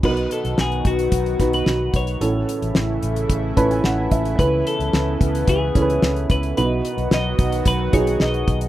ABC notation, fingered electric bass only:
X:1
M:4/4
L:1/16
Q:1/4=110
K:Bmix
V:1 name="Fingered electric bass" clef=bass
B,,,2 z B,,, B,,,2 B,,,2 B,,,2 B,,,2 B,,,2 B,,,2 | A,,,2 z A,,, A,,,2 A,,,2 A,,,2 A,,,2 A,,,2 A,,,2 | C,,2 z C,, C,,2 C,,2 C,,2 C,,2 C,,2 C,,2 | B,,,2 z B,,, B,,,2 B,,,2 B,,,2 B,,,2 B,,,2 B,,,2 |]